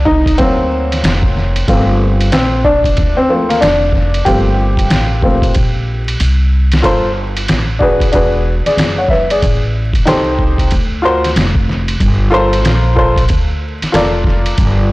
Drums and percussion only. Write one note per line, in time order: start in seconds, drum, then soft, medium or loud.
0.06 kick medium
0.26 kick medium
0.26 ride medium
0.38 kick loud
0.38 ride medium
0.92 snare soft
0.92 ride medium
1.04 snare loud
1.04 hi-hat pedal medium
1.04 ride medium
1.23 kick medium
1.37 snare soft
1.56 ride medium
1.68 kick loud
1.68 ride medium
2.21 ride medium
2.32 snare loud
2.32 hi-hat pedal medium
2.32 ride medium
2.64 kick medium
2.84 kick medium
2.84 ride medium
2.97 kick loud
2.97 ride medium
3.50 snare soft
3.50 ride medium
3.62 snare loud
3.62 hi-hat pedal medium
3.62 ride medium
3.92 kick medium
3.92 snare soft
4.14 ride medium
4.26 kick loud
4.26 ride medium
4.77 kick medium
4.77 ride medium
4.90 snare loud
4.90 hi-hat pedal medium
4.90 ride medium
5.22 kick medium
5.42 kick medium
5.42 ride medium
5.54 kick medium
5.54 ride medium
6.08 ride medium
6.20 hi-hat pedal medium
6.20 ride medium
6.72 snare medium
6.72 ride medium
6.84 kick loud
6.84 ride medium
7.37 ride medium
7.48 snare loud
7.48 hi-hat pedal medium
7.48 ride medium
7.81 kick medium
8.00 kick medium
8.00 ride medium
8.13 kick medium
8.13 ride medium
8.66 snare soft
8.66 ride medium
8.78 snare loud
8.78 hi-hat pedal medium
8.78 ride medium
9.08 kick medium
9.08 snare soft
9.30 ride medium
9.42 kick loud
9.42 ride medium
9.93 kick medium
9.93 ride medium
10.07 snare loud
10.07 hi-hat pedal medium
10.07 ride medium
10.39 kick medium
10.58 kick medium
10.58 ride medium
10.71 kick medium
10.71 ride medium
11.24 snare soft
11.24 ride medium
11.36 snare loud
11.36 hi-hat pedal medium
11.36 ride medium
11.55 kick medium
11.69 snare soft
11.88 ride medium
12.00 kick loud
12.00 ride medium
12.53 ride medium
12.65 snare loud
12.65 hi-hat pedal medium
12.65 ride medium
12.97 kick medium
13.16 kick medium
13.16 ride medium
13.29 kick medium
13.29 ride medium
13.82 snare soft
13.82 ride medium
13.94 snare loud
13.94 hi-hat pedal medium
13.94 ride medium
14.24 kick medium
14.24 snare soft
14.46 ride medium
14.58 kick loud
14.58 ride medium